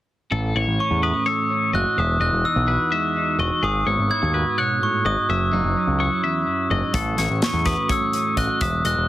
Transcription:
0.31 picked electric bass A1, clean electric guitar A2 A4
0.55 picked electric bass A1, clean electric guitar E3 C#5
0.67 picked electric bass A1
0.79 clean electric guitar C#4, glockenspiel C#6
0.91 picked electric bass E2
1.02 clean electric guitar E4 B4, glockenspiel D#6
1.14 clean electric guitar F#4
1.26 clean electric guitar A3 C#5, glockenspiel E6
1.50 clean electric guitar C#4
1.73 picked electric bass F#1, clean electric guitar F#4 D#5, glockenspiel F#6
1.96 picked electric bass E1, clean electric guitar E2 E5, glockenspiel D#6
2.20 picked electric bass E1, clean electric guitar E3 D#5, glockenspiel F#6
2.32 picked electric bass E1
2.45 clean electric guitar D#4, glockenspiel E6
2.56 picked electric bass B1
2.68 clean electric guitar F#4 B4
2.92 clean electric guitar G#3 E5
3.16 clean electric guitar D#4
3.39 picked electric bass E1, clean electric guitar F#4 D#5, glockenspiel C#6
3.62 picked electric bass G#1, clean electric guitar G#2 G#4, glockenspiel D#6
3.86 picked electric bass G#1, clean electric guitar B3 C#5
3.99 picked electric bass G#1
4.10 clean electric guitar E4, glockenspiel G#6
4.22 picked electric bass D#2, clean electric guitar F#4
4.34 clean electric guitar F#4 B4
4.58 clean electric guitar B2 C#5, glockenspiel F#6
4.81 clean electric guitar A2, glockenspiel C#6
5.05 picked electric bass G#1, clean electric guitar G#2 D#5, glockenspiel D#6
5.29 picked electric bass F#1, clean electric guitar F#2 E5, glockenspiel E6
5.53 picked electric bass F#1, clean electric guitar F#3 D#4
5.64 picked electric bass F#1
5.77 clean electric guitar C#4
5.87 picked electric bass C#2
6.00 clean electric guitar E4 C#5
6.23 clean electric guitar E2 E5
6.47 clean electric guitar F#2
6.70 picked electric bass F#1, clean electric guitar G#2 D#5
6.93 picked electric bass A1, clean electric guitar A2 A4, kick, closed hi-hat
7.18 picked electric bass A1, clean electric guitar E3 C#5, snare, closed hi-hat
7.30 picked electric bass A1
7.42 clean electric guitar C#4, glockenspiel C#6, snare, closed hi-hat
7.53 picked electric bass E2
7.66 clean electric guitar F#4 B4, glockenspiel D#6, kick, snare, closed hi-hat
7.89 clean electric guitar A3 C#5, glockenspiel E6, kick, closed hi-hat
8.13 clean electric guitar C#4, closed hi-hat
8.37 picked electric bass A1, clean electric guitar F#4 D#5, glockenspiel F#6, kick, closed hi-hat
8.61 picked electric bass E1, clean electric guitar E2 E5, glockenspiel D#6, kick, closed hi-hat
8.84 picked electric bass E1, clean electric guitar E3 D#5, glockenspiel F#6, closed hi-hat
8.97 picked electric bass E1

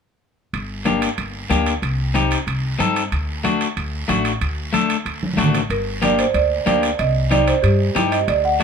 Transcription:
0.53 upright bass G1, high conga, high timbale, long guiro
0.85 clean electric guitar A#3 D4 G4, high conga, high timbale, short guiro
1.02 high timbale, short guiro
1.18 upright bass G1, high conga, high timbale, long guiro
1.50 upright bass D2, clean electric guitar A#3 D4 G4, high conga, high timbale, short guiro
1.66 high timbale, short guiro
1.82 upright bass C2, high conga, high timbale, long guiro
2.14 clean electric guitar C4 D#4 G4, high conga, high timbale, short guiro
2.31 high timbale, short guiro
2.47 upright bass C2, high conga, high timbale, long guiro
2.79 upright bass G2, clean electric guitar C4 D#4 A4, high conga, high timbale, short guiro
2.96 high timbale, short guiro
3.12 upright bass D2, high conga, high timbale, long guiro
3.44 clean electric guitar A3 D4 F#4, high conga, high timbale, short guiro
3.61 high timbale, short guiro
3.77 upright bass D2, high conga, high timbale, long guiro
4.08 upright bass A1, clean electric guitar A3 D4 F#4, high conga, high timbale, short guiro
4.25 high timbale, short guiro
4.41 upright bass D2, high conga, high timbale, long guiro
4.73 clean electric guitar A3 D4 A4, high conga, high timbale, short guiro
4.90 high timbale, short guiro
5.05 upright bass D2, high conga, high timbale, long guiro
5.23 high conga
5.33 upright bass A1, clean electric guitar A3, high conga
5.38 clean electric guitar D4 F#4, high timbale, short guiro
5.44 low conga
5.55 low conga, high timbale, short guiro
5.70 upright bass G1, marimba A#4, high conga, high timbale, long guiro
6.02 clean electric guitar A#3 D4 G4, marimba D5, high conga, high timbale, short guiro
6.19 marimba C5, high timbale, short guiro
6.34 upright bass D2, marimba D5, high conga, high timbale, long guiro
6.66 upright bass D2, clean electric guitar A#3 D4 G4, marimba D5, high conga, high timbale, short guiro
6.83 high timbale, short guiro
6.99 upright bass C2, marimba D#5, high conga, high timbale, long guiro
7.31 clean electric guitar C4 D#4 G4, marimba D5, high conga, high timbale, short guiro
7.47 marimba C5, high timbale, short guiro
7.62 upright bass G2, marimba G4, high conga, high timbale, long guiro
7.95 upright bass G2, clean electric guitar C4 D#4 G4, high conga, high timbale, low timbale, short guiro
8.12 marimba D#5, high timbale, short guiro
8.28 upright bass D2, marimba D5, high conga, high timbale, long guiro
8.45 marimba F#5
8.60 clean electric guitar A3

